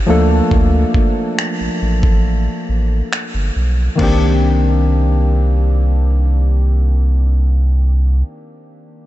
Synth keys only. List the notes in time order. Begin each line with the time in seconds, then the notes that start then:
0.06 F3 A3 A#3 D4 A4
3.96 D#3 A#3 C4
4.01 D4 G4